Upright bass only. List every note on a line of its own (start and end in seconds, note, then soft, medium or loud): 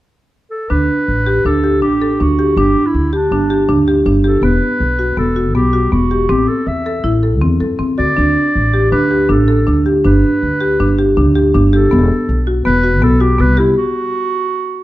0.71 0.87 D2 medium
1.08 1.42 A1 medium
1.45 1.83 D2 medium
1.83 2.16 A1 medium
2.21 2.53 D2 medium
2.57 2.73 G1 medium
2.94 3.27 D2 medium
3.31 3.70 G1 medium
3.69 4.02 D2 medium
4.06 4.38 G1 medium
4.42 4.59 E1 medium
4.80 5.13 B1 medium
5.17 5.55 E1 medium
5.55 5.88 B1 medium
5.93 6.26 E1 medium
6.29 6.46 A1 medium
6.67 7.00 E2 medium
7.04 7.41 A1 medium
7.41 7.58 E2 medium
7.60 7.78 F#2 medium
7.79 7.97 E2 medium
7.99 8.16 D2 medium
8.18 8.35 D2 medium
8.55 8.89 A1 medium
8.92 9.31 D2 medium
9.29 9.63 A1 medium
9.68 10.01 D2 medium
10.05 10.22 G1 medium
10.43 10.76 D2 medium
10.80 11.19 G1 medium
11.17 11.50 D2 medium
11.55 11.88 G1 medium
11.92 12.09 E1 medium
12.29 12.62 B1 medium
12.66 13.03 E1 medium
13.03 13.36 B1 medium
13.39 13.73 C2 medium